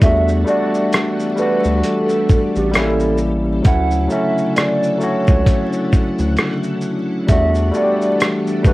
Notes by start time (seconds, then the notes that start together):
Already playing: F#4
0.00 E2 E3 G3 A3 B3 D4 A4 E5, kick, closed hi-hat, shaker
0.06 F#4
0.28 shaker
0.44 G3 A3 D4, shaker
0.49 F#4 D5
0.74 shaker
0.93 cross-stick, closed hi-hat, shaker
1.20 shaker
1.36 G3 A3 D4 B4, shaker
1.42 F#4
1.64 D2, shaker
1.84 A4, closed hi-hat, shaker
2.09 shaker
2.29 kick, shaker
2.55 A1 G4, shaker
2.71 A1 C#3 G3 A#3 C#4 A4, cross-stick, closed hi-hat, shaker
2.76 E4 A4
3.00 shaker
3.18 shaker
3.62 D2 D3 F#3 A3 C#4 F#5, kick, closed hi-hat, shaker
3.66 E4 F#5
3.91 shaker
4.08 F#3 A3 C#4 E5, shaker
4.14 F#4
4.38 shaker
4.56 D5, cross-stick, closed hi-hat, shaker
4.83 shaker
4.98 F#3 A3 C#4, shaker
5.03 F#4 C#5
5.27 C#2, kick, shaker
5.47 kick, closed hi-hat, shaker
5.73 shaker
5.93 kick, shaker
6.19 D2, shaker
6.37 cross-stick, closed hi-hat, shaker
6.63 shaker
6.81 shaker
7.27 E2 E3 G3 A3 B3 D4 A4 E5, kick, closed hi-hat, shaker
7.32 F#4
7.55 shaker
7.71 G3 A3 D4, shaker
7.76 F#4 D5
7.83 G4
8.01 shaker
8.20 cross-stick, closed hi-hat, shaker
8.47 shaker
8.62 G3 A3 D4 B4, kick, shaker
8.68 F#4